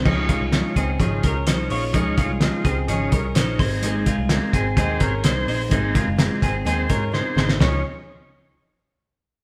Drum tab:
CC |x---------------|----------------|----------------|----------------|
HH |--x-x-x-x-x-x-o-|x-x-x-x-x-x-x-o-|x-x-x-x-x-x-x-o-|x-x-x-x-x-x-----|
SD |----o-------o---|----o-------o---|----o-------o---|--o-o-------o-oo|
FT |----------------|----------------|----------------|----------------|
BD |o-o---o-o-o-----|o-o---o---o---o-|--o---o-o-o-----|o-o---o---o-----|

CC |----------------|
HH |----------------|
SD |o---------------|
FT |o---------------|
BD |----------------|